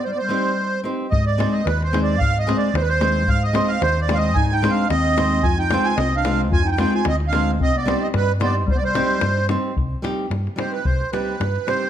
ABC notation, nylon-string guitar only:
X:1
M:2/4
L:1/8
Q:"Swing 16ths" 1/4=111
K:Cm
V:1 name="Nylon-string guitar"
z [CEGc] z [CEGc] | z [A,CEAc] z [A,CEAc] | z [A,CEAc] z [A,CEAc] | z [A,CEAc] z [A,CEAc] |
z [A,CEAc] z [A,CEAc] | z [A,CFAc] z [A,CFAc] | z [A,CFAc] z [A,CFAc] | z [G,CEGc] z [G,CEGc] |
z [G,CEGc] z [G,CEGc] | z [G,CEG] z [G,CEG] | z [G,CEG] z [G,CEG] |]